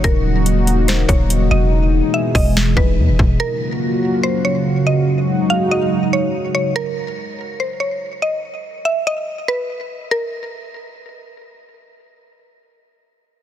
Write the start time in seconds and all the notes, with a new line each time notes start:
Already playing: C#3 F#3 D#4 F#4
0.04 D#1 A#3 A#4, kick, closed hi-hat
0.46 closed hi-hat
0.67 closed hi-hat
0.88 C5, snare, closed hi-hat
1.09 D#1 C#5, kick, closed hi-hat
1.30 closed hi-hat
1.51 E1 D#5
1.72 B2 E3 G#3 G#4
2.14 E5
2.35 E1 D#5, kick, open hi-hat
2.57 snare
2.77 E1 B4, kick
2.98 E2
3.08 E1
3.19 E1, kick
3.40 C#3 F#3 A#3 F4 F#4 A#4
4.23 C5
4.45 C#5
4.87 D#5
5.08 F#3 G#3 D#4 F#4
5.50 F5
5.71 D#5
6.13 C#5
6.55 C#5
6.76 A#4
7.60 C5
7.80 C#5
8.22 D#5
8.85 E5
9.07 D#5
9.48 B4
10.11 A#4